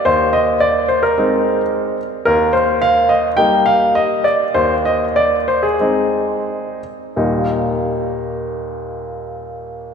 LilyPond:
<<
  \new Staff \with { instrumentName = "Grand piano" } { \time 4/4 \key ees \major \tempo 4 = 100 c''8 ees''8 d''8 c''16 bes'4.~ bes'16 r8 | bes'8 c''8 f''8 ees''8 g''8 f''8 ees''8 d''8 | c''8 ees''8 d''8 c''16 aes'4.~ aes'16 r8 | <ees, bes, g bes ees'>1 | }
  \new Staff \with { instrumentName = "Grand piano" } { \time 4/4 \key ees \major ees,2 <aes c' ees'>2 | ees,2 <g bes ees'>2 | ees,2 <aes c' ees'>2 | r1 | }
>>